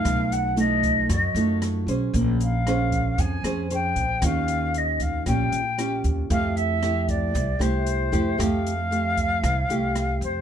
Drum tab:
HH |xxxxxxxx|xxxxxxxx|xxxxxxxx|xxxxxxxx|
SD |r---r-r-|--r--r--|r---r-r-|--r--r--|
BD |o--oo---|o--oo--o|o--oo--o|o--oo--o|

HH |xxxxxxxx|
SD |r---r-r-|
BD |o--oo---|